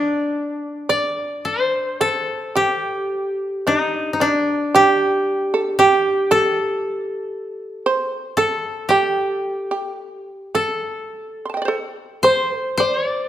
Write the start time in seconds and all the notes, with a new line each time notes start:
Already playing: D4
0.89 D5
1.45 C5
2.01 A4
2.55 G4
3.67 D#4
3.96 D4
4.13 D#4
4.20 D4
4.75 G4
5.54 A4
5.79 G4
6.31 A4
7.86 C5
8.37 A4
8.89 G4
9.71 G4
10.55 A4
11.45 C6
11.50 A5
11.54 D#5 G5
11.62 C5 D5
11.68 A4
12.23 C5
12.58 A4
12.78 C5 D5
12.97 C#5
13.09 D5